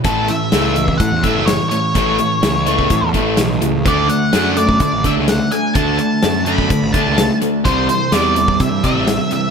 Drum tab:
HH |x-x-x-x-x-x-x-x-|x-x-x-x-x-x-x-x-|x-x-x-x-x-x-x-x-|x-x-x-x-x-x-x-x-|
SD |----o-------o---|----o-------o---|----o-------o---|----o-------o---|
BD |o------oo-o-----|o------oo-o-----|o------oo-o-----|o------oo-o-----|

HH |x-x-x-x-x-x-x-x-|
SD |----o-------o---|
BD |o------oo-o-----|